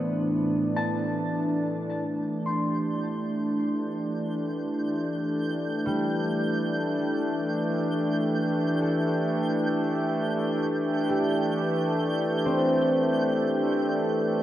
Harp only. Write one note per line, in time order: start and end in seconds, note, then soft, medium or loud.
0.00 2.52 B3 medium
0.00 0.37 C4 medium
0.76 2.69 A5 medium
2.46 5.30 C6 medium
5.86 9.76 G3 medium
8.82 11.31 A4 soft
11.10 13.93 G4 medium
12.45 14.43 C4 medium